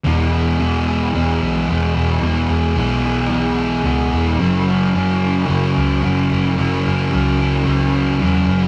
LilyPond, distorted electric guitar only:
\new Staff \with { instrumentName = "Distorted electric guitar" } { \clef bass \time 4/4 \key e \lydian \tempo 4 = 110 <e, b, e>4 <e, b, e>4 <e, b, e>4 <e, b, e>4 | <e, b, e>4 <e, b, e>4 <e, b, e>4 <e, b, e>4 | <fis, cis fis>4 <fis, cis fis>4 <fis, cis fis>4 <fis, cis fis>4 | <fis, cis fis>4 <fis, cis fis>4 <fis, cis fis>4 <fis, cis fis>4 | }